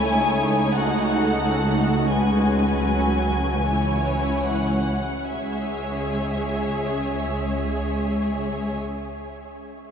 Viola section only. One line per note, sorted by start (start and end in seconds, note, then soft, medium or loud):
0.00 0.75 A3 soft
0.00 0.10 C#4 soft
0.13 2.08 D#4 soft
0.77 2.06 A3 soft
2.09 2.80 G#3 soft
2.09 3.58 C#4 soft
2.80 3.58 F#3 soft
3.59 4.97 E3 soft
3.59 4.95 C#4 soft
5.32 8.79 G#3 soft
5.32 8.78 C#4 soft